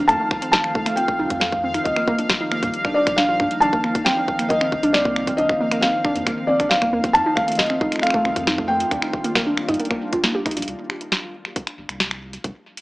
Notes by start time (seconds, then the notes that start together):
Already playing: F5
0.08 F2 D#3 F3 A3 C4 F4 A5, finger snap, closed hi-hat
0.20 A3
0.31 finger snap, kick
0.42 C4, closed hi-hat
0.52 D#4 A5, kick, snare, closed hi-hat
0.64 finger snap
0.75 A3, kick
0.86 A3, finger snap, closed hi-hat
0.96 C4 G5, closed hi-hat
1.08 kick
1.19 C2 D#4
1.30 F2 A3, kick, closed hi-hat
1.40 A3 F5, finger snap, snare
1.52 kick
1.63 C4
1.74 D#4, finger snap, closed hi-hat
1.84 D#2 D#3 G3 A#3 D#4 D#5, kick, closed hi-hat
1.96 A#3, finger snap
2.08 A#3, kick
2.19 D4, closed hi-hat
2.30 finger snap, kick, snare, closed hi-hat
2.41 D#4
2.52 A#3, finger snap
2.63 G2 A#3, kick, closed hi-hat
2.74 closed hi-hat
2.85 D4, finger snap, kick
2.94 D4 D5
3.07 A#1, finger snap, kick, closed hi-hat
3.16 D4 F5, snare, closed hi-hat
3.29 F4
3.40 G2 D4, finger snap, kick
3.51 closed hi-hat
3.60 C2 C4 D4 A5, closed hi-hat
3.73 A#3, kick
3.84 A#3, finger snap
3.95 kick, closed hi-hat
4.05 C4 G5, finger snap, snare, closed hi-hat
4.17 D4
4.28 kick
4.39 A#3, finger snap, closed hi-hat
4.49 A#3 D#5, kick, closed hi-hat
4.61 C4, finger snap
4.72 G1, kick
4.83 C2 D4, closed hi-hat
4.93 A#3 D5, finger snap, snare, closed hi-hat
5.05 A#3, kick
5.16 finger snap
5.27 C4, kick, closed hi-hat
5.37 C2 D4 D#5, closed hi-hat
5.49 finger snap, kick
5.60 A#3
5.71 A#3, finger snap, closed hi-hat
5.81 C4 F5, kick, snare, closed hi-hat
6.05 D4, finger snap, kick
6.16 F2 A#3, closed hi-hat
6.27 A#3, finger snap, kick, closed hi-hat
6.47 C4 D5
6.60 G1 D4, finger snap, kick, closed hi-hat
6.69 F5, snare, closed hi-hat
6.82 A#3, finger snap, kick
6.93 D#2 A#3
7.04 C4, kick, closed hi-hat
7.13 F2 D#3 A3 C4 F4 A5, finger snap, closed hi-hat
7.26 D#4
7.35 A3 F5, finger snap, kick
7.48 A3, closed hi-hat
7.52 closed hi-hat
7.55 D#5, snare, closed hi-hat
7.59 kick, closed hi-hat
7.63 closed hi-hat
7.70 C4, finger snap
7.81 D#4, kick
7.92 finger snap, closed hi-hat
7.96 finger snap
7.99 F5, finger snap
8.03 A3, finger snap, closed hi-hat
8.07 finger snap
8.10 A3, finger snap, kick
8.25 C2 C4, finger snap
8.36 F2, kick, closed hi-hat
8.47 D#4, finger snap, snare, closed hi-hat
8.58 A3, kick
8.68 A3 G5
8.80 closed hi-hat
8.91 D#2 G3 A#3 D4, finger snap, kick, closed hi-hat
9.02 D#4, finger snap
9.13 kick
9.24 A#3, closed hi-hat
9.35 A#3, finger snap, kick, snare, closed hi-hat
9.47 D4
9.57 finger snap
9.69 G2 D#4, kick, closed hi-hat
9.74 closed hi-hat
9.80 A#3, closed hi-hat
9.85 closed hi-hat
9.91 A#3, finger snap, kick
10.13 F4, kick, closed hi-hat
10.24 A#3, snare, closed hi-hat
10.35 G4
10.46 D#4, finger snap, kick, closed hi-hat
10.51 closed hi-hat
10.57 A#1 D4, closed hi-hat
10.62 closed hi-hat
10.68 C2, closed hi-hat
10.90 finger snap
11.01 closed hi-hat
11.12 snare, closed hi-hat
11.45 finger snap
11.56 kick, closed hi-hat
11.67 finger snap, closed hi-hat
11.78 G1
11.89 C2, finger snap, closed hi-hat
12.00 snare, closed hi-hat
12.11 finger snap
12.33 closed hi-hat
12.44 C2, kick, closed hi-hat
12.77 closed hi-hat